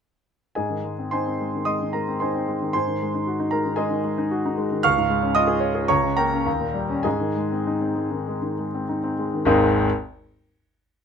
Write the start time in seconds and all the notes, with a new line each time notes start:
0.55 G#2 G#4 D#5 G#5
0.70 D#3
0.84 G#3
0.99 C4
1.11 D#4 C5 G#5 C6
1.27 C4
1.40 G#3
1.54 D#3
1.65 G#3 D#5 C6 D#6
1.82 D#3
1.93 G#3 A#4 A#5
2.08 C4
2.20 D#4 C5 G#5 C6
2.35 C4
2.48 G#3
2.62 D#3
2.73 G#2 C5 G#5 C6
2.87 D#3
3.03 G#3
3.14 D#4
3.27 F#4
3.40 D#4
3.51 G#3 A#4 A#5
3.65 D#3
3.76 G#3 G#4 D#5 G#5
3.90 D#3
4.04 G#3
4.18 D#4
4.31 F#4
4.46 D#4
4.58 G#3
4.71 D#3
4.83 C#2 F5 C#6 F6
4.98 G#2
5.10 G#3
5.22 C#4
5.35 F4 D#5 D#6
5.47 G#4
5.60 C#5
5.75 G#4
5.88 C#2 C#5 A#5 C#6
6.03 C#3
6.17 A#3 A#4 G5 A#5
6.33 C#4
6.46 D#2
6.61 A#2
6.74 G3
6.89 C#4
7.03 G#2 G#4 D#5 G#5
7.20 D#3
7.36 G#3
7.52 C4
7.67 D#4
7.82 C4
7.96 G#3
8.11 D#3
8.28 G#3
8.42 D#3
8.59 G#3
8.75 C4
8.89 D#4
9.04 C4
9.19 G#3
9.34 D#3
9.45 G#1 D#2 G#3 C4 D#4 G#4